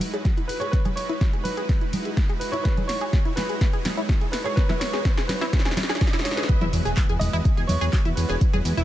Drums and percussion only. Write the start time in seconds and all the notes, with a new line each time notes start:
0.00 open hi-hat, high conga
0.13 closed hi-hat, cowbell
0.25 kick, snare, closed hi-hat, high bongo
0.38 closed hi-hat
0.49 open hi-hat
0.61 closed hi-hat, cowbell
0.73 kick, snare, closed hi-hat, high bongo
0.85 closed hi-hat, cowbell, high conga
0.97 open hi-hat
1.09 closed hi-hat
1.21 kick, snare, closed hi-hat, high bongo
1.33 closed hi-hat
1.45 open hi-hat, high conga
1.57 closed hi-hat
1.69 kick, snare, closed hi-hat, high bongo
1.81 closed hi-hat
1.93 open hi-hat, high conga
2.05 closed hi-hat
2.16 kick, snare, closed hi-hat, high bongo
2.29 closed hi-hat
2.41 open hi-hat
2.53 closed hi-hat
2.65 kick, snare, closed hi-hat, high bongo
2.77 closed hi-hat, cowbell, high conga
2.89 snare, open hi-hat
3.01 closed hi-hat
3.13 kick, snare, closed hi-hat, high bongo
3.25 closed hi-hat
3.37 snare, open hi-hat, high conga
3.49 closed hi-hat
3.61 kick, snare, closed hi-hat, high bongo
3.73 closed hi-hat
3.85 snare, open hi-hat, high conga
3.97 closed hi-hat, cowbell
4.09 kick, snare, closed hi-hat, high bongo
4.21 closed hi-hat
4.33 snare, open hi-hat
4.45 closed hi-hat, cowbell
4.57 kick, snare, closed hi-hat, high bongo
4.69 snare, closed hi-hat, cowbell, high conga
4.81 snare, open hi-hat
4.93 snare, closed hi-hat
5.05 kick, snare, closed hi-hat, high bongo
5.17 snare, closed hi-hat
5.29 snare, open hi-hat, high conga
5.41 snare, closed hi-hat
5.53 kick, snare, closed hi-hat, high bongo
5.59 snare
5.65 snare, closed hi-hat
5.71 snare
5.77 snare, open hi-hat, high conga
5.83 snare
5.89 snare, closed hi-hat
5.95 snare
6.01 kick, snare, closed hi-hat, high bongo
6.07 snare
6.13 snare, closed hi-hat
6.19 snare
6.25 snare, open hi-hat
6.31 snare
6.37 snare, closed hi-hat
6.43 snare
6.49 kick, closed hi-hat, high bongo, shaker
6.61 closed hi-hat, cowbell, high conga
6.73 open hi-hat, shaker
6.85 closed hi-hat, shaker
6.97 kick, clap, closed hi-hat, high bongo, shaker
7.09 closed hi-hat
7.20 open hi-hat, high conga, shaker
7.33 closed hi-hat, shaker
7.44 kick, closed hi-hat, high bongo, shaker
7.57 closed hi-hat
7.69 open hi-hat, high conga, shaker
7.81 closed hi-hat, cowbell, shaker
7.93 kick, clap, closed hi-hat, high bongo, shaker
8.05 closed hi-hat
8.17 open hi-hat, shaker
8.29 closed hi-hat, cowbell, shaker
8.41 kick, closed hi-hat, high bongo, shaker
8.53 closed hi-hat, cowbell, high conga
8.65 open hi-hat, shaker
8.77 closed hi-hat, shaker